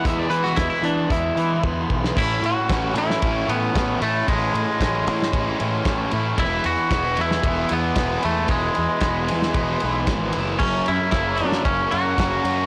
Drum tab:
CC |----------------|x---------------|----------------|----------------|
RD |----------------|--x-x-x-x-x-x-x-|x-x-x-x-x-x-x-x-|x-x-x-x-x-x-x-x-|
HH |x-x-x-x-x-x-----|----------------|----------------|----------------|
SD |---oo----------o|----o--o----o---|----o--o----o---|----o--o----o---|
BD |o---o---o---o-o-|o---o---o---o---|o---o---o---o---|o---o---o---o---|

CC |----------------|x---------------|
RD |x-x-x-x-x-x-x-x-|--x-x-x-x-x-x-x-|
HH |----------------|----------------|
SD |----o--o----o---|----o--o----o---|
BD |o---o---o---o---|o---o---o---o---|